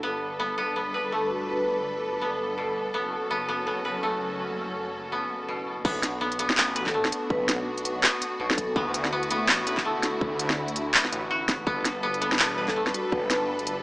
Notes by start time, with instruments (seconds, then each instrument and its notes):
Already playing: synth texture A4
0.03 detuned saw bass G1, string section G3 D4 A4 B4, koto B3
0.40 koto B3
0.58 koto B3
0.76 koto B3
0.94 koto B4
1.05 vibraphone A4
1.12 koto A3
1.30 vibraphone F#4
1.41 vibraphone F#4
1.49 vibraphone B4
1.59 vibraphone B4
2.21 koto B3
2.58 koto B2
2.94 detuned saw bass F#1, string section F#3 C#4 F#4, koto B3
3.31 koto B3
3.49 koto B3
3.67 koto B3
3.85 koto B4
4.03 koto A3
5.12 koto B3
5.48 koto B2
5.85 detuned saw bass B1, string section B3 D4 F#4, koto B3, kick, crash
6.03 snare, closed hi-hat
6.21 koto B3
6.32 closed hi-hat
6.39 koto B3, closed hi-hat
6.50 snare
6.58 detuned saw bass A1, koto B3, clap
6.76 koto B4, closed hi-hat
6.86 vibraphone A4, kick, clap
6.94 koto A3
7.05 snare
7.12 closed hi-hat
7.30 detuned saw bass B1, vibraphone B4, kick
7.49 snare, closed hi-hat
7.78 closed hi-hat
7.85 closed hi-hat
8.03 koto B3, clap, snare
8.22 closed hi-hat
8.40 detuned saw bass B1, koto B2
8.50 vibraphone A4, snare
8.57 vibraphone A4, kick, closed hi-hat
8.76 detuned saw bass D2, string section D3 A3 E4, koto B3, kick
8.94 closed hi-hat
9.05 snare
9.12 koto B3
9.23 closed hi-hat
9.31 koto B3, closed hi-hat
9.49 detuned saw bass A1, koto B3, clap, snare
9.67 koto B4, closed hi-hat
9.77 kick, clap
9.85 koto A3
10.03 snare, closed hi-hat
10.21 detuned saw bass D2, kick
10.39 closed hi-hat
10.50 snare
10.68 closed hi-hat
10.76 closed hi-hat
10.94 koto B3, clap
11.05 snare
11.12 detuned saw bass A1, closed hi-hat
11.31 koto F#4
11.49 kick, snare, closed hi-hat
11.67 detuned saw bass G1, string section G3 D4 A4 B4, koto B3, kick
11.85 snare, closed hi-hat
12.03 koto B3
12.14 closed hi-hat
12.21 koto B3, closed hi-hat
12.32 snare
12.39 detuned saw bass E1, koto B3, clap
12.58 koto B4
12.68 vibraphone A4, kick, clap
12.76 koto A3
12.87 snare
12.94 vibraphone F#4, closed hi-hat
13.04 vibraphone F#4
13.12 detuned saw bass G1, vibraphone B4, kick
13.22 vibraphone B4
13.30 snare, closed hi-hat
13.59 closed hi-hat
13.67 closed hi-hat